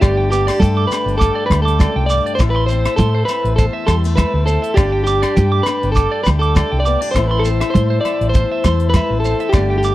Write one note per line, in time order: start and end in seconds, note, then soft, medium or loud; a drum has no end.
0.01 0.48 G1 loud
0.01 1.20 G2 medium
0.01 2.39 D3 medium
0.01 0.62 A3 medium
0.01 0.31 D4 medium
0.01 0.29 G4 medium
0.01 0.16 D5 medium
0.01 2.38 D5 medium
0.01 2.37 G5 medium
0.01 4.73 A5 medium
0.01 kick medium
0.01 cross-stick medium
0.01 closed hi-hat soft
0.01 muted conga soft
0.01 low agogo medium
0.01 shekere medium
0.17 0.30 G5 medium
0.30 0.48 B3 medium
0.30 0.59 G4 medium
0.30 0.46 D6 medium
0.30 closed hi-hat soft
0.30 shekere medium
0.47 0.90 D4 soft
0.47 0.60 D5 medium
0.47 cross-stick medium
0.47 closed hi-hat soft
0.47 low agogo medium
0.60 0.85 G2 medium
0.60 1.51 A3 medium
0.60 0.87 A4 medium
0.60 0.75 G5 medium
0.60 kick medium
0.60 closed hi-hat soft
0.60 high conga medium
0.60 shekere medium
0.77 0.90 D6 medium
0.87 1.17 B4 medium
0.87 muted conga soft
0.87 shekere medium
0.91 2.36 D4 medium
0.91 cross-stick medium
0.91 closed hi-hat soft
0.91 low agogo medium
1.06 1.29 G1 medium
1.06 closed hi-hat soft
1.18 1.79 G2 medium
1.18 1.46 A4 medium
1.18 1.34 D6 medium
1.18 kick medium
1.18 muted conga soft
1.18 shekere medium
1.22 closed hi-hat soft
1.35 1.48 D5 medium
1.46 1.62 B4 loud
1.50 1.86 D2 medium
1.50 3.00 A3 medium
1.50 kick medium
1.50 cross-stick medium
1.50 closed hi-hat soft
1.50 muted conga soft
1.50 high conga medium
1.50 low agogo medium
1.62 2.06 A4 medium
1.62 1.78 D6 medium
1.68 closed hi-hat soft
1.80 2.10 F#2 medium
1.80 1.94 D5 medium
1.80 kick medium
1.80 cross-stick medium
1.80 closed hi-hat medium
1.80 high conga medium
1.80 low agogo medium
1.80 shekere medium
1.96 2.19 C2 medium
1.96 2.09 G5 medium
2.06 2.35 D5 medium
2.06 2.24 D6 medium
2.06 shekere medium
2.10 2.40 G2 medium
2.10 closed hi-hat medium
2.26 2.39 D5 medium
2.26 closed hi-hat soft
2.35 2.40 C5 medium
2.35 shekere medium
2.39 2.85 A1 loud
2.39 3.59 A2 medium
2.39 4.17 E4 medium
2.39 4.75 C5 medium
2.39 4.75 E5 medium
2.39 kick medium
2.39 cross-stick medium
2.39 closed hi-hat soft
2.39 muted conga soft
2.39 low agogo medium
2.50 2.66 B4 medium
2.56 2.68 C6 medium
2.66 2.96 C5 loud
2.66 2.83 C5 medium
2.66 closed hi-hat soft
2.66 shekere medium
2.71 3.29 C4 medium
2.85 2.98 E5 medium
2.85 cross-stick medium
2.85 closed hi-hat soft
2.85 low agogo medium
2.96 3.22 A2 medium
2.96 3.88 A3 medium
2.96 3.25 A4 medium
2.96 3.13 C6 medium
2.96 kick medium
2.96 closed hi-hat medium
2.96 high conga medium
2.96 shekere medium
3.15 3.27 C5 medium
3.25 3.54 B4 medium
3.25 3.43 E5 medium
3.25 closed hi-hat medium
3.25 muted conga soft
3.25 low agogo medium
3.25 shekere medium
3.30 4.47 C4 medium
3.44 3.67 A1 medium
3.44 closed hi-hat soft
3.56 4.78 E2 medium
3.56 3.64 A4 medium
3.56 3.73 C5 medium
3.56 kick medium
3.56 closed hi-hat medium
3.56 muted conga soft
3.56 shekere medium
3.73 3.86 E5 medium
3.87 4.23 E2 medium
3.87 4.05 G3 medium
3.87 3.95 A4 medium
3.87 4.02 C6 medium
3.87 kick medium
3.87 cross-stick medium
3.87 closed hi-hat soft
3.87 muted conga soft
3.87 high conga medium
3.87 low agogo medium
3.87 shekere medium
4.04 4.78 A3 soft
4.04 closed hi-hat soft
4.16 4.77 E4 medium
4.16 4.45 B4 medium
4.16 4.32 E5 medium
4.16 kick medium
4.16 cross-stick medium
4.16 closed hi-hat medium
4.16 high conga medium
4.16 low agogo medium
4.16 shekere medium
4.34 4.56 D2 medium
4.46 4.74 C4 medium
4.46 4.77 A4 medium
4.46 4.61 C5 medium
4.46 closed hi-hat soft
4.46 shekere medium
4.62 4.75 E5 medium
4.62 closed hi-hat soft
4.74 5.23 G1 medium
4.74 5.96 G2 medium
4.74 5.02 G4 medium
4.74 4.91 D5 medium
4.74 kick medium
4.74 cross-stick medium
4.74 closed hi-hat soft
4.74 muted conga soft
4.74 low agogo medium
4.74 shekere medium
4.79 5.07 D4 medium
4.79 7.14 D5 medium
4.79 7.13 G5 medium
4.79 9.95 A5 medium
4.92 5.05 G5 medium
5.04 5.61 G4 medium
5.04 5.21 D6 medium
5.04 closed hi-hat soft
5.04 shekere medium
5.09 5.67 D4 medium
5.22 5.35 D5 medium
5.22 cross-stick medium
5.22 closed hi-hat soft
5.22 low agogo medium
5.36 5.60 G2 medium
5.36 5.51 G5 medium
5.36 muted steel-string acoustic guitar stroke medium
5.36 kick medium
5.36 closed hi-hat soft
5.36 high conga medium
5.36 shekere medium
5.52 6.26 A3 soft
5.52 5.65 D6 medium
5.63 5.91 B4 loud
5.63 cross-stick medium
5.63 closed hi-hat soft
5.63 muted conga soft
5.63 low agogo medium
5.63 shekere medium
5.68 6.86 D4 medium
5.83 6.06 G1 medium
5.83 closed hi-hat soft
5.92 6.23 A4 medium
5.92 6.10 D6 medium
5.92 shekere medium
5.97 7.12 G2 medium
5.97 kick medium
5.97 closed hi-hat soft
5.97 muted conga soft
6.11 6.24 D5 medium
6.23 6.61 D2 medium
6.23 6.28 B4 medium
6.23 kick medium
6.23 cross-stick medium
6.23 closed hi-hat soft
6.23 muted conga soft
6.23 high conga medium
6.23 low agogo medium
6.23 shekere medium
6.28 7.16 A3 medium
6.39 6.79 A4 medium
6.39 6.54 D6 medium
6.39 closed hi-hat soft
6.55 7.13 G4 medium
6.55 6.70 D5 medium
6.55 kick medium
6.55 cross-stick medium
6.55 closed hi-hat soft
6.55 high conga medium
6.55 low agogo medium
6.55 shekere medium
6.72 6.95 C2 medium
6.72 6.84 G5 medium
6.80 7.10 D5 medium
6.85 7.02 B3 medium
6.85 7.00 D6 medium
6.85 closed hi-hat soft
6.85 shekere medium
7.01 7.15 D4 soft
7.01 7.13 D5 medium
7.01 closed hi-hat soft
7.11 8.34 A2 medium
7.11 7.27 C5 medium
7.11 9.50 C5 medium
7.11 9.50 E5 medium
7.11 shekere medium
7.16 7.61 A1 loud
7.16 9.50 E3 medium
7.16 7.75 A3 medium
7.16 7.45 C4 medium
7.16 8.95 E4 medium
7.16 kick medium
7.16 cross-stick medium
7.16 closed hi-hat soft
7.16 muted conga soft
7.16 low agogo medium
7.27 7.43 B4 medium
7.27 7.43 C6 medium
7.39 7.48 A4 medium
7.45 8.05 C4 medium
7.45 7.59 C5 medium
7.45 closed hi-hat soft
7.45 shekere medium
7.60 7.73 E5 medium
7.60 cross-stick medium
7.60 closed hi-hat medium
7.60 low agogo medium
7.70 8.00 C5 medium
7.70 7.88 C6 medium
7.75 7.98 A2 medium
7.75 8.65 A3 medium
7.75 kick medium
7.75 closed hi-hat medium
7.75 high conga medium
7.75 shekere medium
7.90 8.03 C5 medium
8.01 8.29 D5 medium
8.05 9.24 C4 medium
8.05 8.19 E5 medium
8.05 closed hi-hat medium
8.05 muted conga soft
8.05 low agogo medium
8.21 8.43 A1 medium
8.21 closed hi-hat soft
8.29 8.89 C5 medium
8.34 9.54 E2 medium
8.34 8.49 C5 medium
8.34 kick medium
8.34 closed hi-hat soft
8.34 muted conga soft
8.34 shekere medium
8.52 8.63 E5 medium
8.64 8.99 E2 medium
8.64 9.55 A3 medium
8.64 8.79 C6 medium
8.64 kick medium
8.64 cross-stick medium
8.64 closed hi-hat soft
8.64 muted conga soft
8.64 high conga medium
8.64 low agogo medium
8.64 shekere medium
8.80 closed hi-hat soft
8.90 9.19 B4 medium
8.94 9.54 E4 medium
8.94 9.09 E5 medium
8.94 kick medium
8.94 cross-stick medium
8.94 closed hi-hat medium
8.94 high conga medium
8.94 low agogo medium
8.94 shekere medium
9.10 9.33 A1 medium
9.20 9.49 A4 medium
9.24 9.51 C4 soft
9.24 9.39 C5 medium
9.24 closed hi-hat soft
9.24 shekere medium
9.40 9.52 E5 medium
9.40 closed hi-hat soft
9.49 9.77 G4 medium
9.49 9.95 D5 medium
9.49 9.95 G5 medium
9.49 low agogo medium
9.54 9.95 G1 loud
9.54 9.95 G2 medium
9.54 9.95 D3 medium
9.54 9.95 A3 medium
9.54 9.84 D4 medium
9.54 9.68 D5 medium
9.54 kick medium
9.54 cross-stick medium
9.54 closed hi-hat soft
9.54 muted conga soft
9.54 shekere medium
9.70 9.82 G5 medium
9.78 9.95 G4 medium
9.83 9.95 D4 medium
9.83 9.95 D6 medium
9.83 closed hi-hat soft
9.83 shekere medium